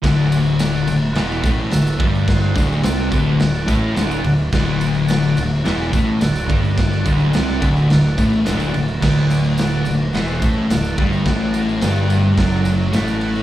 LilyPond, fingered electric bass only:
\new Staff \with { instrumentName = "Fingered electric bass" } { \clef bass \time 4/4 \key d \mixolydian \tempo 4 = 107 d,,4. d,,8 e,,8 a,,8 d,,8 g,,8~ | g,,8 d,,8 c,8 d,,8 d,,8 a,,8 d,,8 d,,8 | d,,4. d,,8 e,,8 a,,8 d,,8 g,,8~ | g,,8 d,,8 c,8 d,,8 d,,8 a,,8 d,,8 d,,8 |
d,,4. d,,8 e,,8 a,,8 d,,8 g,,8 | a,,4 g,,4 fis,,4 a,,4 | }